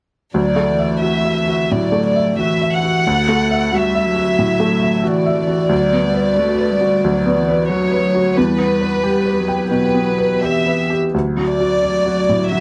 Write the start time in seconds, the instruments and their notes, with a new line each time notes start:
0.34 felt piano D2, cello F#3, violin section D5
0.56 felt piano A3
0.69 cello E3
0.79 felt piano E5
1.02 felt piano F#4, violin section E5
1.25 felt piano E5
1.48 felt piano F#4
1.71 felt piano A2, cello F#3, violin section D5
1.92 felt piano A3
2.05 violin section D5
2.16 felt piano E5
2.38 cello E3, felt piano F#4, violin section E5
2.62 felt piano E5
2.72 violin section F#5
2.83 felt piano F#4
3.06 felt piano D2, cello A3
3.29 felt piano A3
3.51 felt piano E5
3.72 cello G3, felt piano F#4, violin section E5
3.95 felt piano E5
4.05 cello F#3
4.16 felt piano F#4
4.39 felt piano A2
4.60 felt piano A3
4.82 felt piano E5
5.04 cello E3, felt piano F#4, violin section D5
5.26 felt piano E5
5.37 cello E3
5.48 felt piano F#4
5.69 felt piano D2, cello F#3
5.93 felt piano B3
6.05 cello G3
6.14 felt piano B4
6.36 cello A3, felt piano F#4
6.58 felt piano B4
6.71 cello G3
6.81 felt piano F#4
7.04 felt piano D2, cello F#3
7.26 felt piano B3
7.36 cello E3
7.48 felt piano B4
7.69 cello F#3, felt piano F#4, violin section C#5
7.91 felt piano B4
8.03 cello F#3
8.15 felt piano F#4
8.37 felt piano E2, cello G3, violin section B4
8.59 felt piano B3
8.81 felt piano B4
9.04 cello G3, felt piano G4
9.26 felt piano B4
9.38 cello F#3
9.48 felt piano G5
9.71 felt piano B2, violin section B4
9.94 felt piano B3
10.18 felt piano B4
10.42 cello E3, felt piano G4, violin section E5
10.66 felt piano B4
10.90 felt piano G4
11.14 felt piano D2, cello F#3
11.37 felt piano F#3
11.49 violin section D5
11.60 felt piano F#4
11.83 felt piano D5
12.06 felt piano F#4
12.29 felt piano A2
12.52 felt piano F#3, violin section E5